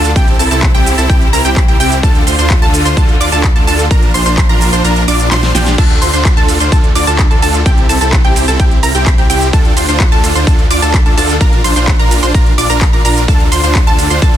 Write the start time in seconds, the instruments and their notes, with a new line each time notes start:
Already playing: detuned saw bass D2, string section D3 A3 F4, supersaw synth D4 F4 A4, synth pluck A5
0.04 closed hi-hat, shaker
0.16 detuned saw bass C2, string section C3 G3 E4, supersaw synth C4 E4 G4, synth pluck G5, kick, closed hi-hat, shaker
0.28 closed hi-hat
0.39 detuned saw bass C2, supersaw synth C4 E4 A4, synth pluck A5, open hi-hat, shaker
0.51 detuned saw bass C2, supersaw synth C4 E4 A4, synth pluck A5, closed hi-hat, shaker
0.63 kick, clap, closed hi-hat, shaker
0.74 detuned saw bass C2, supersaw synth C4 E4 G4, synth pluck G5, closed hi-hat
0.86 open hi-hat, shaker
0.98 detuned saw bass C2, supersaw synth C4 E4 A4, synth pluck A5, closed hi-hat, shaker
1.10 detuned saw bass C2, supersaw synth C4 E4 G4, synth pluck G5, kick, closed hi-hat, shaker
1.22 closed hi-hat
1.33 detuned saw bass C2, supersaw synth C4 E4 A#4, synth pluck A#5, open hi-hat, shaker
1.45 detuned saw bass C2, supersaw synth C4 E4 G4, synth pluck G5, closed hi-hat, shaker
1.56 kick, clap, closed hi-hat, shaker
1.68 detuned saw bass C2, supersaw synth C4 E4 G4, synth pluck G5, closed hi-hat
1.80 detuned saw bass C2, supersaw synth C4 E4 G4, synth pluck G5, open hi-hat, shaker
1.92 closed hi-hat, shaker
2.03 detuned saw bass D2, string section D3 A3 F4, supersaw synth D4 F4 A4, synth pluck A5, kick, closed hi-hat, shaker
2.15 closed hi-hat
2.27 detuned saw bass D2, supersaw synth D4 F4 C5, synth pluck C6, open hi-hat, shaker
2.39 detuned saw bass D2, supersaw synth D4 F4 C5, synth pluck C6, closed hi-hat, shaker
2.50 kick, clap, closed hi-hat, shaker
2.62 detuned saw bass D2, supersaw synth D4 F4 A4, synth pluck A5, closed hi-hat
2.74 open hi-hat, shaker
2.85 detuned saw bass D2, supersaw synth D4 F4 C5, synth pluck C6, closed hi-hat, shaker
2.97 detuned saw bass D2, supersaw synth D4 F4 A4, synth pluck A5, kick, closed hi-hat, shaker
3.09 closed hi-hat
3.20 detuned saw bass D2, supersaw synth D4 F4 D5, synth pluck D6, open hi-hat, shaker
3.32 detuned saw bass D2, supersaw synth D4 F4 A4, synth pluck A5, closed hi-hat, shaker
3.44 kick, clap, closed hi-hat, shaker
3.56 detuned saw bass D2, supersaw synth D4 F4 A4, synth pluck A5, closed hi-hat
3.67 detuned saw bass D2, supersaw synth D4 F4 A4, synth pluck A5, open hi-hat, shaker
3.79 closed hi-hat, shaker
3.91 detuned saw bass A#1, string section F3 A#3 D4, supersaw synth D4 F4 A#4, synth pluck A#5, kick, closed hi-hat, shaker
4.02 closed hi-hat
4.14 detuned saw bass A#1, supersaw synth D4 F4 C5, synth pluck C6, open hi-hat, shaker
4.26 detuned saw bass A#1, supersaw synth D4 F4 C5, synth pluck C6, closed hi-hat, shaker
4.38 kick, clap, closed hi-hat, shaker
4.49 detuned saw bass A#1, supersaw synth D4 F4 A#4, synth pluck A#5, closed hi-hat
4.61 open hi-hat, shaker
4.73 detuned saw bass A#1, supersaw synth D4 F4 C5, synth pluck C6, closed hi-hat, shaker
4.84 detuned saw bass A#1, supersaw synth D4 F4 A#4, synth pluck A#5, closed hi-hat, shaker
4.96 closed hi-hat
5.08 detuned saw bass A#1, supersaw synth D4 F4 D5, synth pluck D6, open hi-hat, shaker
5.20 closed hi-hat, shaker
5.31 detuned saw bass A#1, supersaw synth D4 F4 C5, synth pluck C6, snare, clap, closed hi-hat, shaker
5.43 snare, closed hi-hat
5.55 detuned saw bass A#1, supersaw synth D4 F4 G4, synth pluck G5, snare, open hi-hat, shaker
5.67 snare, closed hi-hat, shaker
5.78 detuned saw bass D2, supersaw synth D4 F4 A4, synth pluck A5, kick, closed hi-hat, crash, ride, shaker
5.90 closed hi-hat
6.02 detuned saw bass D2, supersaw synth D4 F4 C5, synth pluck C6, open hi-hat, ride, shaker
6.13 detuned saw bass D2, supersaw synth D4 F4 C5, synth pluck C6, closed hi-hat, shaker
6.25 kick, clap, closed hi-hat, ride, shaker
6.37 detuned saw bass D2, supersaw synth D4 F4 A4, synth pluck A5, closed hi-hat
6.49 open hi-hat, ride, shaker
6.60 detuned saw bass D2, supersaw synth D4 F4 C5, synth pluck C6, closed hi-hat, shaker
6.72 detuned saw bass D2, supersaw synth D4 F4 A4, synth pluck A5, kick, closed hi-hat, ride, shaker
6.84 closed hi-hat
6.95 detuned saw bass D2, supersaw synth D4 F4 D5, synth pluck D6, open hi-hat, ride, shaker
7.07 detuned saw bass D2, supersaw synth D4 F4 A4, synth pluck A5, closed hi-hat, shaker
7.19 kick, clap, closed hi-hat, ride, shaker
7.31 detuned saw bass D2, supersaw synth D4 F4 A4, synth pluck A5, closed hi-hat
7.42 detuned saw bass D2, supersaw synth D4 F4 A4, synth pluck A5, open hi-hat, ride, shaker
7.54 closed hi-hat, shaker
7.66 detuned saw bass C2, supersaw synth C4 E4 G4, synth pluck G5, kick, closed hi-hat, ride, shaker
7.78 closed hi-hat
7.89 detuned saw bass C2, supersaw synth C4 E4 A4, synth pluck A5, open hi-hat, ride, shaker
8.01 detuned saw bass C2, supersaw synth C4 E4 A4, synth pluck A5, closed hi-hat, shaker
8.13 kick, clap, closed hi-hat, ride, shaker
8.24 detuned saw bass C2, supersaw synth C4 E4 G4, synth pluck G5, closed hi-hat
8.36 open hi-hat, ride, shaker
8.48 detuned saw bass C2, supersaw synth C4 E4 A4, synth pluck A5, closed hi-hat, shaker
8.59 detuned saw bass C2, supersaw synth C4 E4 G4, synth pluck G5, kick, closed hi-hat, ride, shaker
8.71 closed hi-hat
8.83 detuned saw bass C2, supersaw synth C4 E4 A#4, synth pluck A#5, open hi-hat, ride, shaker
8.95 detuned saw bass C2, supersaw synth C4 E4 G4, synth pluck G5, closed hi-hat, shaker
9.06 kick, clap, closed hi-hat, ride, shaker
9.18 detuned saw bass C2, supersaw synth C4 E4 G4, synth pluck G5, closed hi-hat
9.30 detuned saw bass C2, supersaw synth C4 E4 G4, synth pluck G5, open hi-hat, ride, shaker
9.42 closed hi-hat, shaker
9.53 detuned saw bass D2, supersaw synth D4 F4 A4, synth pluck A5, kick, closed hi-hat, ride, shaker
9.65 closed hi-hat
9.77 detuned saw bass D2, supersaw synth D4 F4 C5, synth pluck C6, open hi-hat, ride, shaker
9.88 detuned saw bass D2, supersaw synth D4 F4 C5, synth pluck C6, closed hi-hat, shaker
10.00 kick, clap, closed hi-hat, ride, shaker
10.12 detuned saw bass D2, supersaw synth D4 F4 A4, synth pluck A5, closed hi-hat
10.24 open hi-hat, ride, shaker
10.35 detuned saw bass D2, supersaw synth D4 F4 C5, synth pluck C6, closed hi-hat, shaker
10.47 detuned saw bass D2, supersaw synth D4 F4 A4, synth pluck A5, kick, closed hi-hat, ride, shaker
10.59 closed hi-hat
10.71 detuned saw bass D2, supersaw synth D4 F4 D5, synth pluck D6, open hi-hat, ride, shaker
10.82 detuned saw bass D2, supersaw synth D4 F4 A4, synth pluck A5, closed hi-hat, shaker
10.94 kick, clap, closed hi-hat, ride, shaker
11.06 detuned saw bass D2, supersaw synth D4 F4 A4, synth pluck A5, closed hi-hat
11.17 detuned saw bass D2, supersaw synth D4 F4 A4, synth pluck A5, open hi-hat, ride, shaker
11.29 closed hi-hat, shaker
11.41 detuned saw bass A#1, supersaw synth D4 F4 A#4, synth pluck A#5, kick, closed hi-hat, ride, shaker
11.53 closed hi-hat
11.64 detuned saw bass A#1, supersaw synth D4 F4 C5, synth pluck C6, open hi-hat, ride, shaker
11.76 detuned saw bass A#1, supersaw synth D4 F4 C5, synth pluck C6, closed hi-hat, shaker
11.88 kick, clap, closed hi-hat, ride, shaker
11.99 detuned saw bass A#1, supersaw synth D4 F4 A#4, synth pluck A#5, closed hi-hat
12.11 open hi-hat, ride, shaker
12.23 detuned saw bass A#1, supersaw synth D4 F4 C5, synth pluck C6, closed hi-hat, shaker
12.34 detuned saw bass A#1, supersaw synth D4 F4 A#4, synth pluck A#5, kick, closed hi-hat, ride, shaker
12.46 closed hi-hat
12.58 detuned saw bass A#1, supersaw synth D4 F4 D5, synth pluck D6, open hi-hat, ride, shaker
12.70 detuned saw bass A#1, supersaw synth D4 F4 A#4, synth pluck A#5, closed hi-hat, shaker
12.81 kick, clap, closed hi-hat, ride, shaker
12.93 detuned saw bass A#1, supersaw synth D4 F4 A#4, synth pluck A#5, closed hi-hat
13.05 detuned saw bass A#1, supersaw synth D4 F4 A#4, synth pluck A#5, open hi-hat, ride, shaker
13.17 closed hi-hat, shaker
13.28 detuned saw bass D2, supersaw synth D4 F4 A4, synth pluck A5, kick, closed hi-hat, ride, shaker
13.40 closed hi-hat
13.52 detuned saw bass D2, supersaw synth D4 F4 C5, synth pluck C6, open hi-hat, ride, shaker
13.63 detuned saw bass D2, supersaw synth D4 F4 C5, synth pluck C6, closed hi-hat, shaker
13.75 kick, clap, closed hi-hat, ride, shaker
13.87 detuned saw bass D2, supersaw synth D4 F4 A4, synth pluck A5, closed hi-hat
13.99 open hi-hat, ride, shaker
14.10 detuned saw bass D2, supersaw synth D4 F4 C5, synth pluck C6, closed hi-hat, shaker
14.22 detuned saw bass D2, supersaw synth D4 F4 A4, synth pluck A5, kick, closed hi-hat, ride, shaker
14.34 closed hi-hat